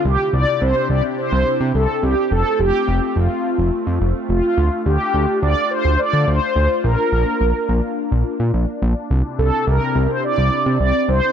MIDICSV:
0, 0, Header, 1, 4, 480
1, 0, Start_track
1, 0, Tempo, 566038
1, 40, Time_signature, 4, 2, 24, 8
1, 9602, End_track
2, 0, Start_track
2, 0, Title_t, "Analog polysynth"
2, 0, Program_c, 0, 90
2, 46, Note_on_c, 0, 67, 106
2, 285, Note_on_c, 0, 74, 109
2, 290, Note_off_c, 0, 67, 0
2, 526, Note_on_c, 0, 72, 106
2, 530, Note_off_c, 0, 74, 0
2, 746, Note_off_c, 0, 72, 0
2, 764, Note_on_c, 0, 74, 99
2, 871, Note_off_c, 0, 74, 0
2, 1003, Note_on_c, 0, 72, 112
2, 1448, Note_off_c, 0, 72, 0
2, 1484, Note_on_c, 0, 69, 96
2, 1720, Note_on_c, 0, 67, 94
2, 1729, Note_off_c, 0, 69, 0
2, 1962, Note_on_c, 0, 69, 100
2, 1967, Note_off_c, 0, 67, 0
2, 2200, Note_on_c, 0, 67, 103
2, 2208, Note_off_c, 0, 69, 0
2, 2678, Note_on_c, 0, 65, 88
2, 2694, Note_off_c, 0, 67, 0
2, 3365, Note_off_c, 0, 65, 0
2, 3642, Note_on_c, 0, 65, 99
2, 4088, Note_off_c, 0, 65, 0
2, 4120, Note_on_c, 0, 67, 105
2, 4566, Note_off_c, 0, 67, 0
2, 4599, Note_on_c, 0, 74, 109
2, 4841, Note_on_c, 0, 72, 108
2, 4847, Note_off_c, 0, 74, 0
2, 5081, Note_on_c, 0, 74, 109
2, 5088, Note_off_c, 0, 72, 0
2, 5319, Note_on_c, 0, 72, 101
2, 5328, Note_off_c, 0, 74, 0
2, 5801, Note_on_c, 0, 70, 107
2, 5814, Note_off_c, 0, 72, 0
2, 7207, Note_off_c, 0, 70, 0
2, 7962, Note_on_c, 0, 69, 89
2, 8184, Note_off_c, 0, 69, 0
2, 8203, Note_on_c, 0, 70, 95
2, 8563, Note_on_c, 0, 72, 99
2, 8572, Note_off_c, 0, 70, 0
2, 8674, Note_off_c, 0, 72, 0
2, 8684, Note_on_c, 0, 74, 117
2, 9154, Note_off_c, 0, 74, 0
2, 9164, Note_on_c, 0, 74, 106
2, 9401, Note_on_c, 0, 72, 96
2, 9409, Note_off_c, 0, 74, 0
2, 9602, Note_off_c, 0, 72, 0
2, 9602, End_track
3, 0, Start_track
3, 0, Title_t, "Analog synth pad"
3, 0, Program_c, 1, 89
3, 40, Note_on_c, 1, 62, 75
3, 40, Note_on_c, 1, 64, 77
3, 41, Note_on_c, 1, 48, 85
3, 41, Note_on_c, 1, 60, 77
3, 42, Note_on_c, 1, 67, 93
3, 1941, Note_off_c, 1, 48, 0
3, 1941, Note_off_c, 1, 62, 0
3, 1941, Note_off_c, 1, 64, 0
3, 1942, Note_off_c, 1, 67, 0
3, 1962, Note_on_c, 1, 57, 83
3, 1963, Note_on_c, 1, 65, 92
3, 3847, Note_off_c, 1, 60, 0
3, 3880, Note_on_c, 1, 62, 76
3, 5767, Note_off_c, 1, 57, 0
3, 5781, Note_off_c, 1, 62, 0
3, 5801, Note_on_c, 1, 58, 81
3, 5801, Note_on_c, 1, 62, 77
3, 7687, Note_off_c, 1, 65, 0
3, 7701, Note_off_c, 1, 58, 0
3, 7720, Note_on_c, 1, 48, 84
3, 7721, Note_on_c, 1, 60, 79
3, 7721, Note_on_c, 1, 64, 76
3, 7721, Note_on_c, 1, 67, 90
3, 9602, Note_off_c, 1, 48, 0
3, 9602, Note_off_c, 1, 60, 0
3, 9602, Note_off_c, 1, 62, 0
3, 9602, Note_off_c, 1, 64, 0
3, 9602, Note_off_c, 1, 67, 0
3, 9602, End_track
4, 0, Start_track
4, 0, Title_t, "Analog synth bass"
4, 0, Program_c, 2, 38
4, 41, Note_on_c, 2, 36, 99
4, 143, Note_off_c, 2, 36, 0
4, 281, Note_on_c, 2, 36, 98
4, 383, Note_off_c, 2, 36, 0
4, 520, Note_on_c, 2, 36, 101
4, 623, Note_off_c, 2, 36, 0
4, 759, Note_on_c, 2, 36, 97
4, 862, Note_off_c, 2, 36, 0
4, 1119, Note_on_c, 2, 36, 100
4, 1223, Note_off_c, 2, 36, 0
4, 1360, Note_on_c, 2, 48, 99
4, 1463, Note_off_c, 2, 48, 0
4, 1480, Note_on_c, 2, 36, 100
4, 1583, Note_off_c, 2, 36, 0
4, 1719, Note_on_c, 2, 36, 100
4, 1823, Note_off_c, 2, 36, 0
4, 1959, Note_on_c, 2, 29, 109
4, 2063, Note_off_c, 2, 29, 0
4, 2199, Note_on_c, 2, 29, 89
4, 2302, Note_off_c, 2, 29, 0
4, 2440, Note_on_c, 2, 29, 105
4, 2543, Note_off_c, 2, 29, 0
4, 2680, Note_on_c, 2, 29, 102
4, 2783, Note_off_c, 2, 29, 0
4, 3039, Note_on_c, 2, 29, 96
4, 3142, Note_off_c, 2, 29, 0
4, 3280, Note_on_c, 2, 41, 94
4, 3383, Note_off_c, 2, 41, 0
4, 3399, Note_on_c, 2, 29, 108
4, 3502, Note_off_c, 2, 29, 0
4, 3638, Note_on_c, 2, 29, 103
4, 3742, Note_off_c, 2, 29, 0
4, 3879, Note_on_c, 2, 38, 105
4, 3982, Note_off_c, 2, 38, 0
4, 4119, Note_on_c, 2, 38, 95
4, 4222, Note_off_c, 2, 38, 0
4, 4358, Note_on_c, 2, 38, 98
4, 4462, Note_off_c, 2, 38, 0
4, 4599, Note_on_c, 2, 38, 103
4, 4703, Note_off_c, 2, 38, 0
4, 4959, Note_on_c, 2, 38, 90
4, 5062, Note_off_c, 2, 38, 0
4, 5200, Note_on_c, 2, 50, 99
4, 5303, Note_off_c, 2, 50, 0
4, 5320, Note_on_c, 2, 38, 108
4, 5423, Note_off_c, 2, 38, 0
4, 5560, Note_on_c, 2, 38, 97
4, 5663, Note_off_c, 2, 38, 0
4, 5800, Note_on_c, 2, 34, 108
4, 5903, Note_off_c, 2, 34, 0
4, 6040, Note_on_c, 2, 34, 104
4, 6143, Note_off_c, 2, 34, 0
4, 6280, Note_on_c, 2, 34, 100
4, 6383, Note_off_c, 2, 34, 0
4, 6520, Note_on_c, 2, 34, 104
4, 6623, Note_off_c, 2, 34, 0
4, 6881, Note_on_c, 2, 34, 93
4, 6984, Note_off_c, 2, 34, 0
4, 7120, Note_on_c, 2, 46, 91
4, 7223, Note_off_c, 2, 46, 0
4, 7239, Note_on_c, 2, 34, 96
4, 7342, Note_off_c, 2, 34, 0
4, 7480, Note_on_c, 2, 34, 101
4, 7583, Note_off_c, 2, 34, 0
4, 7720, Note_on_c, 2, 36, 99
4, 7823, Note_off_c, 2, 36, 0
4, 7960, Note_on_c, 2, 36, 104
4, 8063, Note_off_c, 2, 36, 0
4, 8200, Note_on_c, 2, 36, 103
4, 8303, Note_off_c, 2, 36, 0
4, 8439, Note_on_c, 2, 36, 100
4, 8542, Note_off_c, 2, 36, 0
4, 8800, Note_on_c, 2, 36, 97
4, 8903, Note_off_c, 2, 36, 0
4, 9040, Note_on_c, 2, 48, 101
4, 9143, Note_off_c, 2, 48, 0
4, 9159, Note_on_c, 2, 36, 98
4, 9262, Note_off_c, 2, 36, 0
4, 9399, Note_on_c, 2, 36, 104
4, 9503, Note_off_c, 2, 36, 0
4, 9602, End_track
0, 0, End_of_file